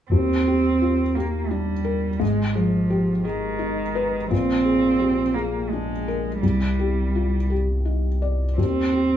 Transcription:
0.10 D#2 C4
0.48 G4
0.82 F4
1.15 A#3 G4
1.51 G3 D4
1.85 A#4
2.19 G#1 G#2 G#3
2.55 F3 G#4
2.90 G4
3.25 D#3 G#4
3.59 D#4
3.95 B4
4.31 A#1 A#2 C4
4.65 G#4
5.00 G4
5.35 A#3 G#4
5.70 G#3 D4
6.08 A#4
6.41 C2 G3
6.79 G4
7.15 F4
7.50 G4
7.85 D#4
8.22 D5
8.57 D#2 C4
8.93 G4

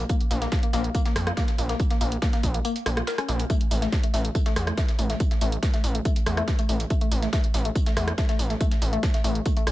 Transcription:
0.09 A#3, kick, closed hi-hat, tambourine
0.20 closed hi-hat
0.31 A#1 A#3, open hi-hat, tambourine
0.42 A#3, snare, closed hi-hat
0.52 kick, snare, closed hi-hat, tambourine
0.63 A#3, closed hi-hat
0.73 A#1 A#3, snare, open hi-hat, tambourine
0.84 closed hi-hat
0.95 A#3, kick, closed hi-hat, tambourine
1.05 A#3, snare, closed hi-hat
1.16 F2, cross-stick, open hi-hat, tambourine
1.27 A#3, cross-stick, closed hi-hat
1.37 A#3, kick, snare, closed hi-hat, tambourine
1.48 snare, closed hi-hat
1.58 A#1 A#3, open hi-hat, tambourine
1.69 A#3, snare, closed hi-hat
1.80 kick, closed hi-hat, tambourine
1.90 A#3, snare, closed hi-hat
2.01 A#1 A#3, open hi-hat, tambourine
2.12 closed hi-hat
2.22 A#3, kick, snare, closed hi-hat, tambourine
2.33 A#3, snare, closed hi-hat
2.43 A#1, kick, open hi-hat, tambourine
2.54 A#3, closed hi-hat
2.65 A#3, closed hi-hat, tambourine
2.76 closed hi-hat
2.86 A#1 A#3, cross-stick, open hi-hat, tambourine
2.97 F4, cross-stick, closed hi-hat
3.07 A#4, snare, closed hi-hat, tambourine
3.18 C#4, cross-stick, closed hi-hat
3.29 A#1 A#3, open hi-hat, tambourine
3.40 closed hi-hat
3.50 A3, kick, closed hi-hat, tambourine
3.61 closed hi-hat
3.71 A1 A3, open hi-hat, tambourine
3.82 A3, snare, closed hi-hat
3.92 kick, snare, closed hi-hat, tambourine
4.03 A3, closed hi-hat
4.14 A1 A3, snare, open hi-hat, tambourine
4.25 closed hi-hat
4.35 A3, kick, closed hi-hat, tambourine
4.46 A3, snare, closed hi-hat
4.56 E2, cross-stick, open hi-hat, tambourine
4.67 A3, cross-stick, closed hi-hat
4.77 A3, kick, snare, closed hi-hat, tambourine
4.88 snare, closed hi-hat
4.99 A1 A3, open hi-hat, tambourine
5.10 A3, snare, closed hi-hat
5.20 kick, closed hi-hat, tambourine
5.31 A3, snare, closed hi-hat
5.41 A1 A3, open hi-hat, tambourine
5.52 closed hi-hat
5.63 A3, kick, snare, closed hi-hat, tambourine
5.74 A3, snare, closed hi-hat
5.84 A1, open hi-hat, tambourine
5.95 A3, closed hi-hat
6.05 A3, kick, closed hi-hat, tambourine
6.16 closed hi-hat
6.26 E2 A3, cross-stick, open hi-hat, tambourine
6.37 A3, cross-stick, closed hi-hat
6.48 kick, snare, closed hi-hat, tambourine
6.59 A3, closed hi-hat
6.69 A1 A3, open hi-hat, tambourine
6.80 closed hi-hat
6.90 A3, kick, closed hi-hat, tambourine
7.01 A3, closed hi-hat
7.11 A1, open hi-hat, tambourine
7.22 A3, snare, closed hi-hat
7.33 A3, kick, snare, closed hi-hat, tambourine
7.44 closed hi-hat
7.54 A1 A3, snare, open hi-hat, tambourine
7.65 A3, closed hi-hat
7.75 kick, closed hi-hat, tambourine
7.86 A3, snare, closed hi-hat
7.97 E2 A3, cross-stick, open hi-hat, tambourine
8.08 cross-stick, closed hi-hat
8.18 A3, kick, snare, closed hi-hat, tambourine
8.29 A3, snare, closed hi-hat
8.39 A1, open hi-hat, tambourine
8.50 A3, snare, closed hi-hat
8.60 A3, kick, closed hi-hat, tambourine
8.71 snare, closed hi-hat
8.82 A1 A3, open hi-hat, tambourine
8.93 A3, closed hi-hat
9.03 kick, snare, closed hi-hat, tambourine
9.14 A3, snare, closed hi-hat
9.24 A1 A3, open hi-hat, tambourine
9.35 closed hi-hat
9.46 A3, kick, closed hi-hat, tambourine
9.57 A3, closed hi-hat
9.67 A1, cross-stick, open hi-hat, tambourine

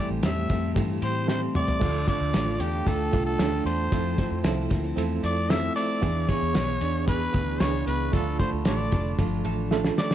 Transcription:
Already playing: A2 E3 G3 A3 C4 E4 G4 A4
0.10 A1
0.22 E2 G3 A3 C4 E4 G4 A4 E5, snare, ride
0.49 F2 G3 C4 E4 A4, kick, ride
0.74 G2 E3 G3 A3 C4 E4 G4 A4, kick, ride
1.01 A2 A3 C4 E4 G4 C5 C6, ride
1.27 G3 A3 C4 E4 G4 A4 C5 C6, snare
1.54 G3 C4 E4 A4 D5 D6, mid tom
1.68 floor tom
1.80 D2 D3 F3 A3 D4 F4 A4, kick, crash
2.08 A3 D5 D6, kick, ride
2.21 D2
2.33 A1 F3 A3 D4 F4 A4, snare, ride
2.37 A4
2.60 E2 D4 F4 G4 A4 G5, ride
2.85 D2 F3 A3 D4 F4 A4 A5, kick, ride
3.12 C2 A3 D4 F4 A4, kick, ride
3.26 A4 A5
3.38 D2 F3 A3 D4 F4 A4, snare, ride
3.65 E2 A3 D4 F4 A4 C5 C6, ride
3.91 F2 F3 C4 E4 F4 A4, kick, ride
4.18 A3, kick, ride
4.31 F2
4.43 C2 F3 C4 E4 F4 A4, snare, ride
4.70 D2 A#3 C4 E4 A4, kick, ride
4.85 C4
4.96 E2 F3 A3 C4 E4 F4 A4, ride
5.23 F2 C4 E4 F4 A4 D5 D6, ride
5.49 F3 C4 E4 F4 A4 E5 E6, snare, ride
5.75 A3 C4 E4 A4 D5 D6, ride
6.01 E2 E3 G#3 B3 D4 E4 G#4, kick, ride
6.29 B3 C#5 C#6, kick, ride
6.42 E2
6.54 B1 G#3 B3 D4 E4 G#4, snare, ride
6.81 E2 B3 D4 G#4, ride
7.06 G#3 B3 D4 E4 G#4 B4 B5, kick, ride
7.33 D2 B3 D4 E4 G#4, kick, ride
7.60 C#2 G#3 B3 D4 E4 G#4 C#5 C#6, snare, ride
7.86 C#2 B3 D4 G#4 B4 B5, ride
8.12 D2 D3 F3 A3 D4 F4 A4 A5, kick, ride
8.39 A3 C5 C6, kick, ride
8.53 D2
8.64 A1 F3 A3 D4 F4 G4 A4 D5 D6, snare, ride
8.79 A4
8.92 F1 D4 F4 A4, kick, ride
9.18 G1 F3 A3 D4 F4 A4, kick, ride
9.44 A1 A3 D4 F4 A4, ride
9.71 F3 A3 D4 F4 A4, snare
9.85 snare
9.97 A3 D4 F4 A4 D5, snare
10.11 snare

